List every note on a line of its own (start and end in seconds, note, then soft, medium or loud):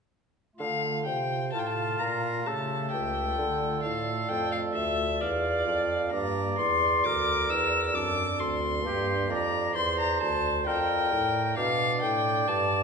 0.55 1.03 A3 soft
0.55 2.40 F4 soft
0.55 2.41 F5 soft
0.55 1.03 F5 medium
0.60 1.08 D3 medium
0.60 1.02 D3 medium
1.05 1.49 C3 medium
1.05 1.55 C3 medium
1.05 1.51 G5 medium
1.52 1.96 A2 medium
1.52 2.00 A2 medium
1.52 2.49 F4 medium
1.52 1.60 A5 medium
1.59 1.68 G5 medium
1.66 2.00 A5 medium
1.99 2.42 A#2 medium
1.99 2.45 A#2 medium
1.99 2.48 A#5 medium
2.41 3.31 A3 medium
2.41 3.33 G4 medium
2.41 3.34 E5 medium
2.45 2.87 C#3 medium
2.45 2.91 C#3 medium
2.45 5.20 A4 medium
2.45 2.91 A5 medium
2.91 3.33 C#2 medium
2.91 3.37 C#2 medium
2.91 3.81 G5 medium
3.33 5.14 A3 medium
3.33 6.07 F4 medium
3.33 6.08 D5 soft
3.38 3.79 D3 medium
3.38 3.83 D3 medium
3.83 4.25 A2 medium
3.83 4.28 A2 medium
3.83 4.30 F5 medium
4.29 4.71 F2 medium
4.29 4.76 F2 medium
4.29 4.51 G5 loud
4.52 4.60 F5 medium
4.73 5.20 D2 medium
4.73 5.17 D2 medium
4.73 5.22 E5 loud
5.19 5.62 E2 medium
5.19 5.68 E2 medium
5.19 6.11 D5 medium
5.19 6.11 F5 medium
5.66 6.08 F2 medium
5.66 6.12 F2 medium
6.07 6.54 A#3 medium
6.07 6.55 D4 medium
6.07 7.89 D5 medium
6.12 6.54 G2 medium
6.12 6.58 G2 medium
6.12 7.07 D5 medium
6.12 6.57 A#5 loud
6.57 7.00 E2 medium
6.57 7.06 E2 medium
6.57 7.06 C6 loud
7.03 7.45 D2 medium
7.03 7.49 D2 medium
7.03 7.95 A#4 medium
7.03 7.51 D6 loud
7.49 7.91 E2 medium
7.49 7.96 E2 medium
7.49 7.96 E6 loud
7.89 8.79 C4 medium
7.89 8.78 D4 medium
7.89 8.80 D5 medium
7.93 8.36 F#2 medium
7.93 8.26 F#2 medium
7.93 8.57 A4 medium
7.93 8.41 D6 loud
8.38 8.80 D2 medium
8.38 8.86 D2 medium
8.38 9.31 C6 loud
8.79 9.26 A#3 medium
8.79 9.27 D4 medium
8.79 11.52 D5 medium
8.84 9.26 G2 medium
8.84 9.29 G2 medium
8.84 9.27 G4 medium
9.29 9.71 F2 medium
9.29 9.76 F2 medium
9.29 9.77 D5 medium
9.29 9.75 A#5 loud
9.74 10.20 E2 medium
9.74 10.17 E2 medium
9.74 10.69 C5 loud
9.74 9.98 C6 loud
10.00 10.21 A#5 loud
10.21 10.63 D2 medium
10.21 10.66 D2 medium
10.21 10.66 A5 loud
10.66 11.07 F2 medium
10.66 11.14 F2 medium
10.66 11.56 A#4 medium
10.66 11.55 G5 loud
11.12 11.57 A2 medium
11.12 11.54 A2 medium
11.54 11.99 B2 medium
11.54 12.05 B2 medium
11.54 12.83 D4 medium
11.54 12.83 D5 medium
11.54 12.83 D5 loud
11.54 12.01 F5 loud
12.02 12.44 A2 medium
12.02 12.47 A2 medium
12.02 12.49 G5 loud
12.48 12.83 G2 medium
12.48 12.83 A5 loud